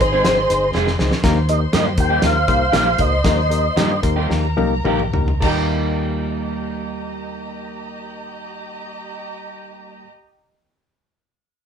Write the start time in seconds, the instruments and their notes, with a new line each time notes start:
Already playing: violin section G#4 D#5 C6
0.00 fingered electric bass G#1, reed electric piano C4 D#4 G#4 C5, tonewheel organ C5, kick, closed hi-hat
0.12 clean electric guitar G#3 C4 D#4 G#4
0.25 fingered electric bass G#1, reed electric piano C4 D#4 G#4 C5, snare, closed hi-hat
0.50 fingered electric bass G1, reed electric piano C4 D#4 G#4 C5, closed hi-hat
0.74 fingered electric bass F1, clean electric guitar G#3 C4 D#4 G#4, reed electric piano C4 D#4 G#4 C5, snare
0.87 snare
0.99 fingered electric bass C#2, reed electric piano C4 D#4 G#4 C5, snare
1.12 snare
1.23 fingered electric bass D#2, reed electric piano D#3 A#3 D#4 G4 A#4, violin section C5 C6, kick, snare, closed hi-hat
1.49 reed electric piano A#3 D#4 G4 A#4, tonewheel organ D#5, closed hi-hat
1.73 fingered electric bass G2, clean electric guitar G3 A#3 D#4 G4, reed electric piano A#3 D#4 G4 A#4, tonewheel organ D#5, snare, closed hi-hat
1.98 fingered electric bass D#2, reed electric piano A#3 D#4 G4 A#4, tonewheel organ G5, kick, closed hi-hat
2.10 clean electric guitar G3 A#3 D#4 G4
2.22 fingered electric bass D#2, reed electric piano A#3 D#4 G4 A#4, tonewheel organ F5, snare, closed hi-hat
2.48 fingered electric bass C2, reed electric piano A#3 D#4 G4 C5, kick, closed hi-hat
2.72 fingered electric bass A#1, clean electric guitar G3 A#3 D#4 G4, reed electric piano A#3 D#4 G4 A#4, snare, closed hi-hat
2.98 fingered electric bass C#2, reed electric piano A#3 D#4 G4 A#4, tonewheel organ D#5, kick, closed hi-hat
3.24 fingered electric bass D#2, reed electric piano D#3 A#3 D#4 G4 A#4, kick, snare, closed hi-hat
3.50 reed electric piano A#3 D#4 G4 A#4, closed hi-hat
3.76 fingered electric bass G2, clean electric guitar G3 A#3 D#4 G4, reed electric piano A#3 D#4 G4 A#4, snare, closed hi-hat
4.03 fingered electric bass D#2, reed electric piano A#3 D#4 G4 A#4, kick, closed hi-hat
4.16 clean electric guitar G3 A#3 D#4 G4
4.29 fingered electric bass D#2, reed electric piano A#3 D#4 G4 A#4, violin section A#4 A#5, snare
4.57 fingered electric bass C2, reed electric piano A#3 D#4 G4 A#4, high tom
4.85 fingered electric bass A#1, clean electric guitar G3 A#3 D#4 G4, reed electric piano A#3 D#4 G4 A#4, mid tom
4.99 mid tom
5.13 fingered electric bass C#2, reed electric piano A#3 D#4 G4 A#4, floor tom
5.28 floor tom
5.40 fingered electric bass D#2, reed electric piano D#2 A#3 D#4 G4 A#4, clean electric guitar G3 A#3 D#4, violin section G4 D#5 A#5, kick, crash
5.46 clean electric guitar G4